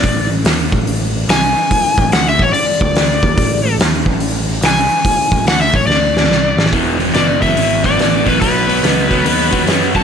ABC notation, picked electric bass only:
X:1
M:4/4
L:1/8
Q:"Swing" 1/4=144
K:A
V:1 name="Picked electric bass" clef=bass
A,,, A,,, ^D,, A,,,3 =C,, z | z A,,, D,, A,,, z D,,2 ^D,, | A,,, A,,, ^D,, A,,,3 =C,, z | z A,,, D,, A,,, D,,2 =C,, A,,, |
E,,,2 F,,,2 G,,,2 A,,,2 | B,,,2 C,,2 ^D,,2 F,,2 |]